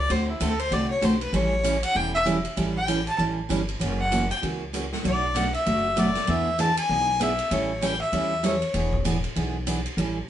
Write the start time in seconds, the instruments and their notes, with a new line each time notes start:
0.00 fiddle D5
0.09 upright bass D2, steel-string acoustic guitar D3 A3 C4 F#4 A4, fiddle C5, ride
0.30 fiddle E4
0.40 upright bass D2, steel-string acoustic guitar D3 A3 C4 F#4 A4, fiddle A4, hi-hat pedal, ride
0.59 fiddle C5, ride
0.70 upright bass C2, steel-string acoustic guitar D3 A3 C4 F#4 A4, fiddle D5, ride
0.91 fiddle C#5
1.01 upright bass B1, steel-string acoustic guitar D3 A3 C4 F#4 A4, fiddle C5, hi-hat pedal, ride
1.21 fiddle B4, ride
1.33 upright bass A1, steel-string acoustic guitar E3 G3 C#4 E4 A4, fiddle C#5, ride
1.63 steel-string acoustic guitar E3 G3 C#4 E4 A4, hi-hat pedal, ride
1.83 fiddle F#5, ride
1.94 upright bass E1, steel-string acoustic guitar E3 G3 C#4 E4 A4, fiddle G5
2.15 fiddle E5
2.25 steel-string acoustic guitar E3 G3 C#4 E4 A4, hi-hat pedal, ride
2.45 ride
2.56 upright bass A1, steel-string acoustic guitar E3 G3 C#4 E4 A4, ride
2.77 fiddle G5
2.88 steel-string acoustic guitar E3 G3 C#4 E4 A4, hi-hat pedal, ride
3.07 fiddle A5, ride
3.18 upright bass A1, steel-string acoustic guitar E3 G3 C#4 E4 A4, ride
3.49 upright bass G1, steel-string acoustic guitar E3 G3 C#4 E4 A4, hi-hat pedal, ride
3.69 ride
3.79 upright bass F#1, steel-string acoustic guitar C#3 E3 A#3 C#4 F#4, ride
4.00 fiddle F#5
4.11 steel-string acoustic guitar C#3 E3 A#3 C#4 F#4, hi-hat pedal, ride
4.31 fiddle G5, ride
4.42 upright bass C#2, steel-string acoustic guitar C#3 E3 A#3 C#4 F#4, ride
4.73 steel-string acoustic guitar C#3 E3 A#3 C#4 F#4, hi-hat pedal, ride
4.92 snare
5.03 upright bass B1, steel-string acoustic guitar B2 F#3 A3 D4 F#4, fiddle D5, ride
5.34 steel-string acoustic guitar B2 F#3 A3 D4 F#4, fiddle F#5, hi-hat pedal, ride
5.54 fiddle E5, ride
5.66 upright bass F#1, steel-string acoustic guitar B2 F#3 A3 D4 F#4, ride
5.96 steel-string acoustic guitar B2 F#3 A3 D4 F#4, fiddle D5, hi-hat pedal, ride
6.15 snare, ride
6.27 upright bass E2, steel-string acoustic guitar E3 B3 D4 G#4, fiddle E5, ride
6.58 steel-string acoustic guitar E3 B3 D4 G#4, fiddle A5, hi-hat pedal, ride
6.77 fiddle G#5, ride
6.89 upright bass B1, steel-string acoustic guitar E3 B3 D4 G#4
7.20 steel-string acoustic guitar E3 B3 D4 G#4, fiddle E5, hi-hat pedal, ride
7.39 ride
7.51 upright bass A1, steel-string acoustic guitar E3 G3 C#4 E4 A4, fiddle C#5, ride
7.81 steel-string acoustic guitar E3 G3 C#4 E4 A4, fiddle G5, hi-hat pedal, ride
8.02 fiddle E5
8.12 upright bass E2, steel-string acoustic guitar E3 G3 C#4 E4 A4, ride
8.43 steel-string acoustic guitar E3 G3 C#4 E4 A4, fiddle C#5, hi-hat pedal, ride
8.62 ride
8.74 upright bass E1, steel-string acoustic guitar E3 B3 D4 G#4, ride
8.93 kick
9.04 steel-string acoustic guitar E3 B3 D4 G#4, hi-hat pedal, ride
9.24 ride
9.36 upright bass B1, steel-string acoustic guitar E3 B3 D4 G#4, ride
9.66 steel-string acoustic guitar E3 B3 D4 G#4, hi-hat pedal, ride
9.86 ride
9.97 upright bass A1, steel-string acoustic guitar E3 G3 C#4 E4 A4, ride